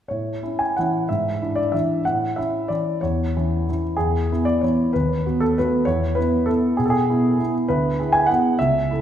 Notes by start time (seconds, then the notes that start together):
0.08 A2 C#5
0.43 C#4 E4
0.59 G#5
0.77 E3 C#4 E4 F#5
1.09 G#2 E5
1.42 D4 E4
1.56 D5
1.72 E3 D4 E4 E5
2.05 A2 F#5
2.36 C#4 E4 E5
2.68 E3 C#4 E4 D5
3.01 E2 C#5
3.36 E3 C#4 E4
3.69 E3 C#4 E4
3.97 E2 G#4
4.32 B3 E4
4.45 D5
4.61 E3 B3 E4 C#5
4.93 D#2 B4
5.26 B3 F#4
5.40 A4
5.58 A3 B3 F#4 B4
5.85 E2 C#5
6.15 B3 E4 B4
6.46 B3 E4 A4
6.77 B2 G#4
6.86 A4
6.90 G#4
7.10 B3 E4
7.39 B3 E4
7.68 D2 B4
8.00 E4 G#4
8.13 G#5
8.27 B3 E4 G#4 F#5
8.59 C#2 E5
8.91 E4 A4